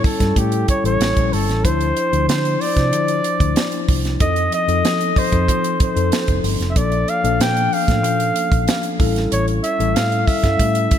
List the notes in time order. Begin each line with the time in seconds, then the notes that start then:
Already playing: G3 C#4 E4 A4
0.04 A4, kick, open hi-hat
0.19 G2 G3 C#4 E4 A4, kick, snare, closed hi-hat
0.36 A2 G4, kick, closed hi-hat
0.52 closed hi-hat
0.68 C#5, kick, closed hi-hat
0.84 A1 G3 C#4 E4 A4 C#5, closed hi-hat
1.00 A1 G3 C#4 E4 A4, snare, closed hi-hat
1.17 A#1, kick, closed hi-hat
1.33 G1 A4, open hi-hat
1.49 A1, snare, closed hi-hat
1.64 D2 F3 D4 E4 C5, kick, closed hi-hat
1.81 closed hi-hat
1.97 closed hi-hat
2.12 D2 F3 D4 E4 C5, closed hi-hat
2.28 D3 C5, snare, closed hi-hat
2.45 closed hi-hat
2.61 D5, open hi-hat
2.75 C3 F3 D4 E4 C5, kick, snare, closed hi-hat
2.93 D3, closed hi-hat
3.08 closed hi-hat
3.24 closed hi-hat
3.40 D2, kick, closed hi-hat
3.56 snare, closed hi-hat
3.72 closed hi-hat
3.88 C2, kick, open hi-hat
4.05 snare, closed hi-hat
4.20 F2 F3 C4 D#4 A4 D#5, kick, closed hi-hat
4.36 closed hi-hat
4.52 D#5, closed hi-hat
4.67 F2 F3 C4 D#4 A4, closed hi-hat
4.84 F3, snare, closed hi-hat
5.01 closed hi-hat
5.16 C5, kick, open hi-hat
5.31 F2 F3 C4 D#4 A4, kick, closed hi-hat
5.48 F3, kick, closed hi-hat
5.64 closed hi-hat
5.80 C5, kick, closed hi-hat
5.96 F2 F3 C4 D#4 A4, closed hi-hat
6.12 snare, closed hi-hat
6.28 F1, kick, closed hi-hat
6.44 G1, open hi-hat
6.60 F1, snare, closed hi-hat
6.70 E5
6.75 A#1 F3 A#3 D4 A4 D5, kick, closed hi-hat
6.92 closed hi-hat
7.08 F5, closed hi-hat
7.23 A#1 F3 A#3 D4 A4, closed hi-hat
7.40 A#2 G5, snare, closed hi-hat
7.57 closed hi-hat
7.73 F5, open hi-hat
7.87 A2 F3 A#3 C#4 A4, kick, snare, closed hi-hat
7.94 D4
8.03 A#2, closed hi-hat
8.20 closed hi-hat
8.36 closed hi-hat
8.52 A#1, kick, closed hi-hat
8.68 snare, closed hi-hat
8.83 closed hi-hat
8.99 A1 G3 C4 E4 A4, kick, open hi-hat
9.06 C#4
9.16 snare, closed hi-hat
9.32 A1 C#5, closed hi-hat
9.48 closed hi-hat
9.63 E5, closed hi-hat
9.79 A1 G3 C#4 E4 A4, closed hi-hat
9.95 A2 F5, snare, closed hi-hat
10.12 closed hi-hat
10.27 E5, kick, open hi-hat
10.43 G2 G3 C#4 E4 A4, kick, snare, closed hi-hat
10.59 A2, kick, closed hi-hat
10.75 closed hi-hat
10.91 kick, closed hi-hat